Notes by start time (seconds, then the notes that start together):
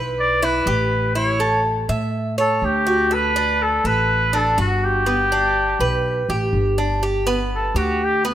Already playing: B1 B4
0.19 D5
0.43 E4 B4
0.66 A1 G4
1.15 E4 C#5
1.40 A4
1.89 A2 E5
2.38 A4 C#5
2.62 D2 G4
2.87 F#4
3.11 A4 B4
3.36 D4
3.62 A4
3.84 A1 A4 B4
4.33 D4 A4
4.57 G1 F#4
4.84 G4
5.06 B3
5.32 D4
5.79 B1 B4
6.29 A1 G4
6.53 G1
6.78 D4
7.03 G4
7.27 B3
7.55 A4
7.74 D2 F#4 G4
8.04 G4
8.25 B3